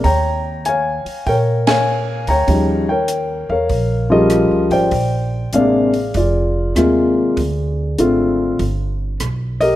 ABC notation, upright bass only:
X:1
M:4/4
L:1/8
Q:"Swing" 1/4=98
K:Eb
V:1 name="Upright bass" clef=bass
E,,3 z B,,3 D,, | E,,3 =E,, B,,,2- (3B,,, _D,, A,,, | B,,,2 =A,,,2 F,,,2 E,,2 | D,,2 A,,,2 G,,,2 =B,,,2 |]